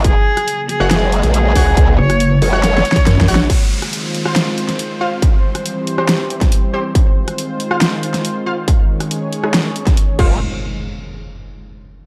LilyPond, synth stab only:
\new Staff \with { instrumentName = "Synth stab" } { \time 4/4 \key f \phrygian \tempo 4 = 139 r4. r16 <ges' des'' ges''>16 r4. <ges' des'' ges''>16 r16 | r4. r16 <ges' des'' ges''>16 r4. <ges' des'' ges''>16 r16 | r4. r16 <f' c'' f''>16 r4. <f' c'' f''>16 r16 | r4. r16 <c' g' c''>16 r4. <c' g' c''>16 r16 |
r4. r16 <f' c'' f''>16 r4. <f' c'' f''>16 r16 | r4. r16 <aes ees' aes'>16 r4. <f' c'' f''>8 | r1 | }